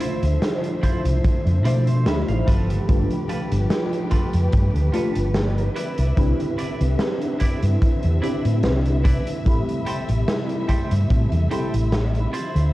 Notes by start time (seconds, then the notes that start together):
Already playing: D3 F3 A3 D4 E4 F4 C5 E5
0.00 E4 F4 C5, closed hi-hat
0.23 D2, closed hi-hat
0.42 snare, closed hi-hat
0.64 closed hi-hat
0.83 E4 F4 C5, kick, closed hi-hat
1.05 C2, closed hi-hat
1.24 kick, closed hi-hat
1.46 F2, closed hi-hat
1.64 B2 F3 A3 D4 E4 F4 C5 D5 E5, closed hi-hat
1.87 C5, closed hi-hat
2.06 D2 F3 A3 D4 G4 E5 B5, snare, closed hi-hat
2.28 A1 F5, closed hi-hat
2.47 G1 A3 F4 G4 A4 B4, kick, closed hi-hat
2.70 closed hi-hat
2.87 G1 A3 D4 F4 G4 B4, kick, closed hi-hat
3.10 closed hi-hat
3.29 F4 A4 B4, closed hi-hat
3.52 G1, closed hi-hat
3.70 snare, closed hi-hat
3.93 closed hi-hat
4.11 F4 A4 B4, kick, closed hi-hat
4.33 F2, closed hi-hat
4.52 G2, kick, closed hi-hat
4.75 D2, closed hi-hat
4.93 A3 D4 F4 G4 A4 B4, closed hi-hat
5.15 G1, closed hi-hat
5.34 snare, closed hi-hat
5.58 closed hi-hat
5.76 D3 C4 E4 B4 D5 E5, closed hi-hat
5.98 C2, closed hi-hat
6.16 C2 C4 D4 E4 G4 B4, kick, closed hi-hat
6.40 closed hi-hat
6.58 E4 B4 D5, closed hi-hat
6.81 C2, closed hi-hat
6.99 snare, closed hi-hat
7.21 closed hi-hat
7.40 E4 B4 D5, kick, closed hi-hat
7.63 G2, closed hi-hat
7.82 kick, closed hi-hat
8.03 E2, closed hi-hat
8.22 C4 D4 E4 G4 B4 D5, closed hi-hat
8.45 A2, closed hi-hat
8.63 C2 C4 D4 E4 G4 B4, snare, closed hi-hat
8.85 closed hi-hat
9.04 E4 B4 D5, kick, closed hi-hat
9.27 closed hi-hat
9.45 A1 C3 G3 A3 C4 E4 G4 B5, kick, closed hi-hat
9.69 closed hi-hat
9.86 G4 A4 C5, closed hi-hat
10.09 A1, closed hi-hat
10.28 snare, closed hi-hat
10.49 closed hi-hat
10.69 G4 A4 C5, kick, closed hi-hat
10.91 G2, closed hi-hat
11.10 A2, kick, closed hi-hat
11.32 E2, closed hi-hat
11.50 A3 C4 E4 G4 A4 C5 B5, closed hi-hat
11.74 A1, closed hi-hat
11.92 snare, closed hi-hat
12.15 closed hi-hat
12.33 D3 F3 E4 F4 C5, closed hi-hat
12.56 D2, closed hi-hat